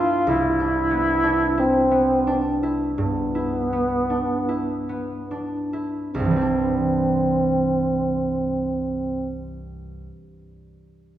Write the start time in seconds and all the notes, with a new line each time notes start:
Already playing: G2 B3 D4 E4 F4
0.27 C2 E4
0.60 D4
0.91 B3
1.23 D4
1.58 C4 E4
1.91 B3
2.27 D4
2.63 E4
2.98 G2 B3
3.35 E4
3.73 B3
4.10 D4
4.49 E4
4.89 B3
5.31 D4
5.73 E4
6.10 C4
6.15 C2
6.20 G2
6.25 E3
6.31 G3
6.36 C4
6.41 D4